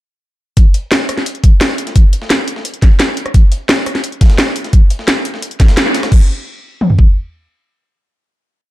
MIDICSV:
0, 0, Header, 1, 2, 480
1, 0, Start_track
1, 0, Tempo, 346821
1, 787, Time_signature, 4, 2, 24, 8
1, 12046, End_track
2, 0, Start_track
2, 0, Title_t, "Drums"
2, 787, Note_on_c, 9, 42, 97
2, 788, Note_on_c, 9, 36, 120
2, 926, Note_off_c, 9, 36, 0
2, 926, Note_off_c, 9, 42, 0
2, 1027, Note_on_c, 9, 42, 70
2, 1028, Note_off_c, 9, 42, 0
2, 1028, Note_on_c, 9, 42, 72
2, 1166, Note_off_c, 9, 42, 0
2, 1267, Note_on_c, 9, 38, 119
2, 1267, Note_on_c, 9, 42, 95
2, 1406, Note_off_c, 9, 38, 0
2, 1406, Note_off_c, 9, 42, 0
2, 1507, Note_on_c, 9, 37, 60
2, 1507, Note_on_c, 9, 42, 71
2, 1627, Note_off_c, 9, 42, 0
2, 1627, Note_on_c, 9, 38, 38
2, 1627, Note_on_c, 9, 42, 45
2, 1646, Note_off_c, 9, 37, 0
2, 1747, Note_off_c, 9, 42, 0
2, 1747, Note_on_c, 9, 42, 100
2, 1766, Note_off_c, 9, 38, 0
2, 1867, Note_off_c, 9, 42, 0
2, 1867, Note_on_c, 9, 42, 39
2, 1987, Note_off_c, 9, 42, 0
2, 1987, Note_on_c, 9, 42, 68
2, 1988, Note_off_c, 9, 42, 0
2, 1988, Note_on_c, 9, 36, 111
2, 1988, Note_on_c, 9, 42, 67
2, 2126, Note_off_c, 9, 36, 0
2, 2126, Note_off_c, 9, 42, 0
2, 2227, Note_on_c, 9, 38, 122
2, 2227, Note_on_c, 9, 42, 102
2, 2347, Note_off_c, 9, 42, 0
2, 2347, Note_on_c, 9, 37, 38
2, 2347, Note_on_c, 9, 42, 44
2, 2365, Note_off_c, 9, 38, 0
2, 2466, Note_off_c, 9, 42, 0
2, 2466, Note_on_c, 9, 42, 70
2, 2467, Note_off_c, 9, 42, 0
2, 2467, Note_on_c, 9, 42, 68
2, 2486, Note_off_c, 9, 37, 0
2, 2587, Note_off_c, 9, 42, 0
2, 2587, Note_on_c, 9, 38, 53
2, 2587, Note_on_c, 9, 42, 40
2, 2707, Note_off_c, 9, 42, 0
2, 2707, Note_on_c, 9, 36, 127
2, 2707, Note_on_c, 9, 42, 97
2, 2725, Note_off_c, 9, 38, 0
2, 2845, Note_off_c, 9, 42, 0
2, 2846, Note_off_c, 9, 36, 0
2, 2947, Note_on_c, 9, 42, 70
2, 3067, Note_on_c, 9, 38, 52
2, 3085, Note_off_c, 9, 42, 0
2, 3187, Note_off_c, 9, 38, 0
2, 3187, Note_on_c, 9, 38, 121
2, 3187, Note_on_c, 9, 42, 94
2, 3325, Note_off_c, 9, 38, 0
2, 3325, Note_off_c, 9, 42, 0
2, 3427, Note_on_c, 9, 42, 67
2, 3547, Note_on_c, 9, 38, 48
2, 3566, Note_off_c, 9, 42, 0
2, 3666, Note_on_c, 9, 42, 92
2, 3667, Note_off_c, 9, 42, 0
2, 3667, Note_on_c, 9, 42, 93
2, 3685, Note_off_c, 9, 38, 0
2, 3787, Note_off_c, 9, 42, 0
2, 3787, Note_on_c, 9, 42, 37
2, 3906, Note_off_c, 9, 42, 0
2, 3906, Note_on_c, 9, 42, 70
2, 3907, Note_off_c, 9, 42, 0
2, 3907, Note_on_c, 9, 36, 113
2, 3907, Note_on_c, 9, 38, 36
2, 3907, Note_on_c, 9, 42, 67
2, 4046, Note_off_c, 9, 36, 0
2, 4046, Note_off_c, 9, 38, 0
2, 4046, Note_off_c, 9, 42, 0
2, 4146, Note_on_c, 9, 38, 120
2, 4146, Note_on_c, 9, 42, 93
2, 4147, Note_off_c, 9, 38, 0
2, 4147, Note_off_c, 9, 42, 0
2, 4147, Note_on_c, 9, 38, 124
2, 4147, Note_on_c, 9, 42, 96
2, 4267, Note_on_c, 9, 37, 39
2, 4286, Note_off_c, 9, 38, 0
2, 4286, Note_off_c, 9, 42, 0
2, 4387, Note_on_c, 9, 42, 65
2, 4406, Note_off_c, 9, 37, 0
2, 4507, Note_off_c, 9, 42, 0
2, 4507, Note_on_c, 9, 37, 62
2, 4507, Note_on_c, 9, 42, 39
2, 4626, Note_off_c, 9, 42, 0
2, 4626, Note_on_c, 9, 42, 85
2, 4627, Note_off_c, 9, 42, 0
2, 4627, Note_on_c, 9, 36, 127
2, 4627, Note_on_c, 9, 42, 92
2, 4646, Note_off_c, 9, 37, 0
2, 4766, Note_off_c, 9, 36, 0
2, 4766, Note_off_c, 9, 42, 0
2, 4867, Note_on_c, 9, 42, 68
2, 5006, Note_off_c, 9, 42, 0
2, 5107, Note_on_c, 9, 38, 122
2, 5107, Note_on_c, 9, 42, 91
2, 5108, Note_off_c, 9, 38, 0
2, 5108, Note_off_c, 9, 42, 0
2, 5108, Note_on_c, 9, 38, 127
2, 5108, Note_on_c, 9, 42, 92
2, 5246, Note_off_c, 9, 38, 0
2, 5246, Note_off_c, 9, 42, 0
2, 5347, Note_on_c, 9, 37, 57
2, 5347, Note_on_c, 9, 42, 72
2, 5347, Note_on_c, 9, 46, 78
2, 5467, Note_off_c, 9, 42, 0
2, 5467, Note_on_c, 9, 42, 45
2, 5468, Note_on_c, 9, 38, 42
2, 5486, Note_off_c, 9, 37, 0
2, 5486, Note_off_c, 9, 46, 0
2, 5587, Note_off_c, 9, 42, 0
2, 5587, Note_on_c, 9, 42, 94
2, 5606, Note_off_c, 9, 38, 0
2, 5707, Note_off_c, 9, 42, 0
2, 5707, Note_on_c, 9, 42, 36
2, 5827, Note_off_c, 9, 42, 0
2, 5827, Note_on_c, 9, 36, 113
2, 5827, Note_on_c, 9, 38, 90
2, 5827, Note_on_c, 9, 42, 67
2, 5828, Note_off_c, 9, 42, 0
2, 5828, Note_on_c, 9, 42, 62
2, 5887, Note_off_c, 9, 38, 0
2, 5887, Note_off_c, 9, 42, 0
2, 5887, Note_on_c, 9, 38, 89
2, 5887, Note_on_c, 9, 42, 69
2, 5947, Note_off_c, 9, 38, 0
2, 5947, Note_off_c, 9, 42, 0
2, 5947, Note_on_c, 9, 38, 104
2, 5947, Note_on_c, 9, 42, 83
2, 5966, Note_off_c, 9, 36, 0
2, 6067, Note_off_c, 9, 38, 0
2, 6067, Note_off_c, 9, 42, 0
2, 6067, Note_on_c, 9, 38, 120
2, 6067, Note_on_c, 9, 42, 90
2, 6068, Note_off_c, 9, 38, 0
2, 6068, Note_off_c, 9, 42, 0
2, 6068, Note_on_c, 9, 38, 127
2, 6068, Note_on_c, 9, 42, 93
2, 6187, Note_off_c, 9, 42, 0
2, 6187, Note_on_c, 9, 37, 37
2, 6187, Note_on_c, 9, 42, 45
2, 6206, Note_off_c, 9, 38, 0
2, 6307, Note_off_c, 9, 42, 0
2, 6307, Note_on_c, 9, 42, 71
2, 6308, Note_on_c, 9, 46, 77
2, 6326, Note_off_c, 9, 37, 0
2, 6427, Note_on_c, 9, 38, 53
2, 6428, Note_off_c, 9, 42, 0
2, 6428, Note_on_c, 9, 42, 37
2, 6446, Note_off_c, 9, 46, 0
2, 6547, Note_off_c, 9, 42, 0
2, 6547, Note_on_c, 9, 42, 88
2, 6548, Note_off_c, 9, 42, 0
2, 6548, Note_on_c, 9, 36, 125
2, 6548, Note_on_c, 9, 42, 91
2, 6565, Note_off_c, 9, 38, 0
2, 6686, Note_off_c, 9, 36, 0
2, 6686, Note_off_c, 9, 42, 0
2, 6787, Note_on_c, 9, 42, 71
2, 6788, Note_off_c, 9, 42, 0
2, 6788, Note_on_c, 9, 42, 67
2, 6907, Note_on_c, 9, 38, 52
2, 6926, Note_off_c, 9, 42, 0
2, 7027, Note_off_c, 9, 38, 0
2, 7027, Note_on_c, 9, 38, 121
2, 7027, Note_on_c, 9, 42, 93
2, 7028, Note_off_c, 9, 38, 0
2, 7028, Note_off_c, 9, 42, 0
2, 7028, Note_on_c, 9, 38, 122
2, 7028, Note_on_c, 9, 42, 88
2, 7166, Note_off_c, 9, 38, 0
2, 7166, Note_off_c, 9, 42, 0
2, 7268, Note_on_c, 9, 42, 71
2, 7268, Note_on_c, 9, 46, 80
2, 7388, Note_on_c, 9, 38, 49
2, 7406, Note_off_c, 9, 42, 0
2, 7406, Note_off_c, 9, 46, 0
2, 7507, Note_on_c, 9, 42, 94
2, 7508, Note_off_c, 9, 42, 0
2, 7508, Note_on_c, 9, 42, 91
2, 7526, Note_off_c, 9, 38, 0
2, 7628, Note_off_c, 9, 42, 0
2, 7628, Note_on_c, 9, 42, 35
2, 7747, Note_off_c, 9, 42, 0
2, 7747, Note_on_c, 9, 38, 106
2, 7747, Note_on_c, 9, 42, 79
2, 7748, Note_off_c, 9, 38, 0
2, 7748, Note_off_c, 9, 42, 0
2, 7748, Note_on_c, 9, 36, 114
2, 7748, Note_on_c, 9, 38, 37
2, 7748, Note_on_c, 9, 42, 61
2, 7867, Note_off_c, 9, 38, 0
2, 7867, Note_off_c, 9, 42, 0
2, 7867, Note_on_c, 9, 38, 110
2, 7867, Note_on_c, 9, 42, 80
2, 7886, Note_off_c, 9, 36, 0
2, 7987, Note_off_c, 9, 38, 0
2, 7987, Note_off_c, 9, 42, 0
2, 7987, Note_on_c, 9, 38, 126
2, 7987, Note_on_c, 9, 42, 90
2, 8107, Note_off_c, 9, 42, 0
2, 8107, Note_on_c, 9, 42, 39
2, 8108, Note_on_c, 9, 37, 36
2, 8126, Note_off_c, 9, 38, 0
2, 8227, Note_off_c, 9, 42, 0
2, 8227, Note_on_c, 9, 38, 107
2, 8227, Note_on_c, 9, 42, 80
2, 8228, Note_on_c, 9, 46, 82
2, 8246, Note_off_c, 9, 37, 0
2, 8347, Note_off_c, 9, 38, 0
2, 8347, Note_off_c, 9, 42, 0
2, 8347, Note_on_c, 9, 38, 107
2, 8347, Note_on_c, 9, 42, 80
2, 8348, Note_off_c, 9, 42, 0
2, 8348, Note_on_c, 9, 37, 55
2, 8348, Note_on_c, 9, 42, 36
2, 8366, Note_off_c, 9, 46, 0
2, 8468, Note_on_c, 9, 36, 114
2, 8468, Note_on_c, 9, 49, 89
2, 8486, Note_off_c, 9, 37, 0
2, 8486, Note_off_c, 9, 38, 0
2, 8486, Note_off_c, 9, 42, 0
2, 8606, Note_off_c, 9, 36, 0
2, 8606, Note_off_c, 9, 49, 0
2, 9428, Note_on_c, 9, 47, 63
2, 9548, Note_on_c, 9, 43, 78
2, 9566, Note_off_c, 9, 47, 0
2, 9668, Note_on_c, 9, 36, 96
2, 9686, Note_off_c, 9, 43, 0
2, 9806, Note_off_c, 9, 36, 0
2, 12046, End_track
0, 0, End_of_file